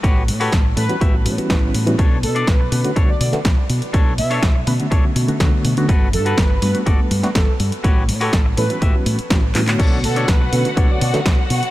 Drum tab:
CC |----------------|----------------|----------------|----------------|
HH |x-oox-oxx-oxx-ox|x-oxx-oxx-oxx-ox|x-oox-oxx-oxx-ox|x-oxx-oxx-oxx-ox|
CP |----------------|----------------|----------------|----------------|
SD |----o-------o---|----o------oo---|----o-------o---|----o------oo---|
BD |o---o---o---o---|o---o---o---o---|o---o---o---o---|o---o---o---o---|

CC |----------------|x---------------|
HH |x-oox-oxx-oxx-ox|x-oxx-oxx-oxx-ox|
CP |--------------xx|----------------|
SD |----o-------o---|----o------oo---|
BD |o---o---o---o---|o---o---o---o---|